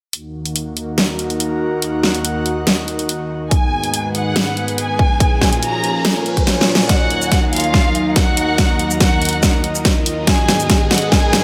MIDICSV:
0, 0, Header, 1, 6, 480
1, 0, Start_track
1, 0, Key_signature, -6, "minor"
1, 0, Tempo, 422535
1, 151, Time_signature, 4, 2, 24, 8
1, 12995, End_track
2, 0, Start_track
2, 0, Title_t, "Violin section"
2, 0, Program_c, 0, 48
2, 3992, Note_on_c, 0, 80, 97
2, 4620, Note_off_c, 0, 80, 0
2, 4712, Note_on_c, 0, 78, 92
2, 5340, Note_off_c, 0, 78, 0
2, 5431, Note_on_c, 0, 80, 96
2, 6300, Note_off_c, 0, 80, 0
2, 6391, Note_on_c, 0, 82, 94
2, 7020, Note_off_c, 0, 82, 0
2, 7832, Note_on_c, 0, 66, 76
2, 7832, Note_on_c, 0, 78, 97
2, 8460, Note_off_c, 0, 66, 0
2, 8460, Note_off_c, 0, 78, 0
2, 8551, Note_on_c, 0, 65, 80
2, 8551, Note_on_c, 0, 77, 91
2, 9180, Note_off_c, 0, 65, 0
2, 9180, Note_off_c, 0, 77, 0
2, 9271, Note_on_c, 0, 66, 78
2, 9272, Note_on_c, 0, 78, 100
2, 10140, Note_off_c, 0, 66, 0
2, 10140, Note_off_c, 0, 78, 0
2, 10230, Note_on_c, 0, 78, 90
2, 10231, Note_on_c, 0, 66, 74
2, 10860, Note_off_c, 0, 66, 0
2, 10860, Note_off_c, 0, 78, 0
2, 11669, Note_on_c, 0, 80, 98
2, 11670, Note_on_c, 0, 68, 76
2, 12299, Note_off_c, 0, 68, 0
2, 12299, Note_off_c, 0, 80, 0
2, 12390, Note_on_c, 0, 66, 73
2, 12391, Note_on_c, 0, 78, 94
2, 12612, Note_off_c, 0, 66, 0
2, 12613, Note_off_c, 0, 78, 0
2, 12631, Note_on_c, 0, 68, 79
2, 12631, Note_on_c, 0, 80, 101
2, 12995, Note_off_c, 0, 68, 0
2, 12995, Note_off_c, 0, 80, 0
2, 12995, End_track
3, 0, Start_track
3, 0, Title_t, "Analog synth pad"
3, 0, Program_c, 1, 89
3, 152, Note_on_c, 1, 63, 74
3, 437, Note_on_c, 1, 66, 86
3, 486, Note_on_c, 1, 70, 71
3, 1253, Note_on_c, 1, 78, 75
3, 3991, Note_off_c, 1, 70, 0
3, 4253, Note_on_c, 1, 68, 74
3, 4383, Note_on_c, 1, 71, 85
3, 4590, Note_on_c, 1, 80, 85
3, 4762, Note_off_c, 1, 66, 0
3, 4762, Note_off_c, 1, 78, 0
3, 5910, Note_on_c, 1, 65, 78
3, 5911, Note_off_c, 1, 71, 0
3, 6030, Note_on_c, 1, 70, 70
3, 6505, Note_on_c, 1, 73, 81
3, 6681, Note_off_c, 1, 68, 0
3, 6682, Note_off_c, 1, 63, 0
3, 7831, Note_off_c, 1, 65, 0
3, 7832, Note_on_c, 1, 63, 89
3, 8673, Note_on_c, 1, 75, 76
3, 8832, Note_on_c, 1, 82, 78
3, 8888, Note_off_c, 1, 80, 0
3, 9372, Note_off_c, 1, 73, 0
3, 11669, Note_on_c, 1, 68, 75
3, 11671, Note_off_c, 1, 70, 0
3, 11671, Note_off_c, 1, 82, 0
3, 12099, Note_on_c, 1, 71, 81
3, 12442, Note_off_c, 1, 63, 0
3, 12539, Note_on_c, 1, 83, 91
3, 12995, Note_off_c, 1, 68, 0
3, 12995, Note_off_c, 1, 71, 0
3, 12995, Note_off_c, 1, 75, 0
3, 12995, Note_off_c, 1, 83, 0
3, 12995, End_track
4, 0, Start_track
4, 0, Title_t, "Analog synth pad"
4, 0, Program_c, 2, 89
4, 151, Note_on_c, 2, 39, 70
4, 152, Note_on_c, 2, 51, 65
4, 152, Note_on_c, 2, 58, 66
4, 152, Note_on_c, 2, 66, 79
4, 3952, Note_off_c, 2, 39, 0
4, 3953, Note_off_c, 2, 58, 0
4, 3953, Note_off_c, 2, 66, 0
4, 3991, Note_on_c, 2, 44, 75
4, 3991, Note_on_c, 2, 59, 68
4, 3992, Note_on_c, 2, 68, 83
4, 5866, Note_off_c, 2, 51, 0
4, 5892, Note_off_c, 2, 44, 0
4, 5892, Note_off_c, 2, 59, 0
4, 5912, Note_on_c, 2, 46, 75
4, 5912, Note_on_c, 2, 53, 70
4, 5913, Note_on_c, 2, 61, 72
4, 7793, Note_off_c, 2, 68, 0
4, 7812, Note_off_c, 2, 46, 0
4, 7813, Note_off_c, 2, 53, 0
4, 7813, Note_off_c, 2, 61, 0
4, 7829, Note_on_c, 2, 39, 79
4, 7829, Note_on_c, 2, 51, 70
4, 7830, Note_on_c, 2, 54, 80
4, 7830, Note_on_c, 2, 58, 68
4, 11632, Note_off_c, 2, 39, 0
4, 11632, Note_off_c, 2, 54, 0
4, 11632, Note_off_c, 2, 58, 0
4, 11672, Note_on_c, 2, 44, 78
4, 11672, Note_on_c, 2, 59, 74
4, 11672, Note_on_c, 2, 68, 88
4, 12995, Note_off_c, 2, 44, 0
4, 12995, Note_off_c, 2, 51, 0
4, 12995, Note_off_c, 2, 59, 0
4, 12995, Note_off_c, 2, 68, 0
4, 12995, End_track
5, 0, Start_track
5, 0, Title_t, "Riser"
5, 0, Program_c, 3, 103
5, 3991, Note_on_c, 3, 60, 67
5, 7831, Note_off_c, 3, 60, 0
5, 7831, Note_on_c, 3, 60, 78
5, 12995, Note_off_c, 3, 60, 0
5, 12995, End_track
6, 0, Start_track
6, 0, Title_t, "Drums"
6, 151, Note_on_c, 9, 42, 73
6, 264, Note_off_c, 9, 42, 0
6, 517, Note_on_c, 9, 42, 49
6, 631, Note_off_c, 9, 42, 0
6, 632, Note_on_c, 9, 42, 74
6, 745, Note_off_c, 9, 42, 0
6, 871, Note_on_c, 9, 42, 50
6, 984, Note_off_c, 9, 42, 0
6, 1111, Note_on_c, 9, 38, 102
6, 1111, Note_on_c, 9, 42, 70
6, 1225, Note_off_c, 9, 38, 0
6, 1225, Note_off_c, 9, 42, 0
6, 1351, Note_on_c, 9, 42, 48
6, 1465, Note_off_c, 9, 42, 0
6, 1478, Note_on_c, 9, 42, 48
6, 1591, Note_off_c, 9, 42, 0
6, 1591, Note_on_c, 9, 42, 75
6, 1705, Note_off_c, 9, 42, 0
6, 2071, Note_on_c, 9, 42, 74
6, 2185, Note_off_c, 9, 42, 0
6, 2311, Note_on_c, 9, 38, 57
6, 2425, Note_off_c, 9, 38, 0
6, 2437, Note_on_c, 9, 42, 48
6, 2551, Note_off_c, 9, 42, 0
6, 2551, Note_on_c, 9, 42, 78
6, 2664, Note_off_c, 9, 42, 0
6, 2791, Note_on_c, 9, 42, 49
6, 2905, Note_off_c, 9, 42, 0
6, 3031, Note_on_c, 9, 38, 101
6, 3031, Note_on_c, 9, 42, 74
6, 3144, Note_off_c, 9, 38, 0
6, 3144, Note_off_c, 9, 42, 0
6, 3271, Note_on_c, 9, 42, 48
6, 3384, Note_off_c, 9, 42, 0
6, 3397, Note_on_c, 9, 42, 48
6, 3510, Note_off_c, 9, 42, 0
6, 3511, Note_on_c, 9, 42, 77
6, 3625, Note_off_c, 9, 42, 0
6, 3990, Note_on_c, 9, 36, 113
6, 3991, Note_on_c, 9, 42, 76
6, 4104, Note_off_c, 9, 36, 0
6, 4104, Note_off_c, 9, 42, 0
6, 4357, Note_on_c, 9, 42, 48
6, 4471, Note_off_c, 9, 42, 0
6, 4471, Note_on_c, 9, 42, 79
6, 4585, Note_off_c, 9, 42, 0
6, 4712, Note_on_c, 9, 42, 49
6, 4825, Note_off_c, 9, 42, 0
6, 4951, Note_on_c, 9, 38, 110
6, 4951, Note_on_c, 9, 42, 68
6, 5064, Note_off_c, 9, 38, 0
6, 5064, Note_off_c, 9, 42, 0
6, 5191, Note_on_c, 9, 42, 47
6, 5305, Note_off_c, 9, 42, 0
6, 5318, Note_on_c, 9, 42, 48
6, 5431, Note_off_c, 9, 42, 0
6, 5431, Note_on_c, 9, 42, 72
6, 5545, Note_off_c, 9, 42, 0
6, 5671, Note_on_c, 9, 36, 102
6, 5784, Note_off_c, 9, 36, 0
6, 5911, Note_on_c, 9, 36, 111
6, 5912, Note_on_c, 9, 42, 73
6, 6024, Note_off_c, 9, 36, 0
6, 6025, Note_off_c, 9, 42, 0
6, 6151, Note_on_c, 9, 36, 58
6, 6151, Note_on_c, 9, 38, 57
6, 6264, Note_off_c, 9, 36, 0
6, 6265, Note_off_c, 9, 38, 0
6, 6277, Note_on_c, 9, 42, 49
6, 6391, Note_off_c, 9, 42, 0
6, 6391, Note_on_c, 9, 42, 73
6, 6504, Note_off_c, 9, 42, 0
6, 6631, Note_on_c, 9, 42, 47
6, 6744, Note_off_c, 9, 42, 0
6, 6870, Note_on_c, 9, 38, 109
6, 6870, Note_on_c, 9, 42, 71
6, 6983, Note_off_c, 9, 38, 0
6, 6983, Note_off_c, 9, 42, 0
6, 7110, Note_on_c, 9, 42, 45
6, 7224, Note_off_c, 9, 42, 0
6, 7237, Note_on_c, 9, 36, 63
6, 7237, Note_on_c, 9, 42, 46
6, 7350, Note_off_c, 9, 42, 0
6, 7350, Note_on_c, 9, 38, 65
6, 7350, Note_on_c, 9, 42, 72
6, 7351, Note_off_c, 9, 36, 0
6, 7463, Note_off_c, 9, 38, 0
6, 7463, Note_off_c, 9, 42, 0
6, 7510, Note_on_c, 9, 38, 76
6, 7624, Note_off_c, 9, 38, 0
6, 7670, Note_on_c, 9, 38, 87
6, 7784, Note_off_c, 9, 38, 0
6, 7831, Note_on_c, 9, 36, 94
6, 7831, Note_on_c, 9, 38, 49
6, 7831, Note_on_c, 9, 42, 79
6, 7944, Note_off_c, 9, 36, 0
6, 7945, Note_off_c, 9, 38, 0
6, 7945, Note_off_c, 9, 42, 0
6, 8071, Note_on_c, 9, 42, 54
6, 8185, Note_off_c, 9, 42, 0
6, 8197, Note_on_c, 9, 82, 73
6, 8310, Note_off_c, 9, 82, 0
6, 8311, Note_on_c, 9, 36, 94
6, 8311, Note_on_c, 9, 38, 48
6, 8311, Note_on_c, 9, 42, 77
6, 8424, Note_off_c, 9, 36, 0
6, 8424, Note_off_c, 9, 38, 0
6, 8424, Note_off_c, 9, 42, 0
6, 8551, Note_on_c, 9, 42, 49
6, 8593, Note_off_c, 9, 42, 0
6, 8593, Note_on_c, 9, 42, 66
6, 8631, Note_off_c, 9, 42, 0
6, 8631, Note_on_c, 9, 42, 77
6, 8676, Note_off_c, 9, 42, 0
6, 8676, Note_on_c, 9, 42, 37
6, 8790, Note_off_c, 9, 42, 0
6, 8791, Note_on_c, 9, 36, 96
6, 8791, Note_on_c, 9, 38, 50
6, 8904, Note_off_c, 9, 36, 0
6, 8904, Note_off_c, 9, 38, 0
6, 9031, Note_on_c, 9, 42, 49
6, 9144, Note_off_c, 9, 42, 0
6, 9269, Note_on_c, 9, 38, 52
6, 9269, Note_on_c, 9, 42, 81
6, 9271, Note_on_c, 9, 36, 94
6, 9383, Note_off_c, 9, 38, 0
6, 9383, Note_off_c, 9, 42, 0
6, 9384, Note_off_c, 9, 36, 0
6, 9510, Note_on_c, 9, 46, 87
6, 9624, Note_off_c, 9, 46, 0
6, 9750, Note_on_c, 9, 36, 94
6, 9750, Note_on_c, 9, 38, 55
6, 9750, Note_on_c, 9, 42, 80
6, 9864, Note_off_c, 9, 36, 0
6, 9864, Note_off_c, 9, 38, 0
6, 9864, Note_off_c, 9, 42, 0
6, 9990, Note_on_c, 9, 42, 51
6, 10104, Note_off_c, 9, 42, 0
6, 10116, Note_on_c, 9, 82, 69
6, 10229, Note_off_c, 9, 82, 0
6, 10230, Note_on_c, 9, 36, 97
6, 10230, Note_on_c, 9, 38, 62
6, 10230, Note_on_c, 9, 42, 81
6, 10343, Note_off_c, 9, 38, 0
6, 10343, Note_off_c, 9, 42, 0
6, 10344, Note_off_c, 9, 36, 0
6, 10469, Note_on_c, 9, 42, 50
6, 10511, Note_off_c, 9, 42, 0
6, 10511, Note_on_c, 9, 42, 63
6, 10549, Note_off_c, 9, 42, 0
6, 10549, Note_on_c, 9, 42, 77
6, 10596, Note_off_c, 9, 42, 0
6, 10596, Note_on_c, 9, 42, 40
6, 10709, Note_off_c, 9, 42, 0
6, 10710, Note_on_c, 9, 36, 97
6, 10710, Note_on_c, 9, 38, 63
6, 10710, Note_on_c, 9, 82, 73
6, 10823, Note_off_c, 9, 38, 0
6, 10823, Note_off_c, 9, 82, 0
6, 10824, Note_off_c, 9, 36, 0
6, 10949, Note_on_c, 9, 42, 54
6, 11063, Note_off_c, 9, 42, 0
6, 11076, Note_on_c, 9, 82, 73
6, 11189, Note_off_c, 9, 82, 0
6, 11189, Note_on_c, 9, 38, 68
6, 11189, Note_on_c, 9, 42, 85
6, 11190, Note_on_c, 9, 36, 97
6, 11303, Note_off_c, 9, 38, 0
6, 11303, Note_off_c, 9, 42, 0
6, 11304, Note_off_c, 9, 36, 0
6, 11429, Note_on_c, 9, 46, 92
6, 11543, Note_off_c, 9, 46, 0
6, 11670, Note_on_c, 9, 36, 96
6, 11670, Note_on_c, 9, 38, 73
6, 11670, Note_on_c, 9, 42, 82
6, 11784, Note_off_c, 9, 36, 0
6, 11784, Note_off_c, 9, 38, 0
6, 11784, Note_off_c, 9, 42, 0
6, 11911, Note_on_c, 9, 38, 74
6, 11911, Note_on_c, 9, 42, 51
6, 12024, Note_off_c, 9, 38, 0
6, 12024, Note_off_c, 9, 42, 0
6, 12037, Note_on_c, 9, 82, 72
6, 12150, Note_on_c, 9, 36, 99
6, 12151, Note_off_c, 9, 82, 0
6, 12151, Note_on_c, 9, 38, 78
6, 12151, Note_on_c, 9, 42, 81
6, 12264, Note_off_c, 9, 36, 0
6, 12264, Note_off_c, 9, 38, 0
6, 12264, Note_off_c, 9, 42, 0
6, 12391, Note_on_c, 9, 38, 79
6, 12391, Note_on_c, 9, 42, 50
6, 12433, Note_off_c, 9, 42, 0
6, 12433, Note_on_c, 9, 42, 65
6, 12471, Note_off_c, 9, 42, 0
6, 12471, Note_on_c, 9, 42, 80
6, 12505, Note_off_c, 9, 38, 0
6, 12518, Note_off_c, 9, 42, 0
6, 12518, Note_on_c, 9, 42, 39
6, 12630, Note_on_c, 9, 36, 101
6, 12631, Note_off_c, 9, 42, 0
6, 12631, Note_on_c, 9, 38, 74
6, 12744, Note_off_c, 9, 36, 0
6, 12745, Note_off_c, 9, 38, 0
6, 12872, Note_on_c, 9, 38, 81
6, 12872, Note_on_c, 9, 42, 50
6, 12985, Note_off_c, 9, 38, 0
6, 12985, Note_off_c, 9, 42, 0
6, 12995, End_track
0, 0, End_of_file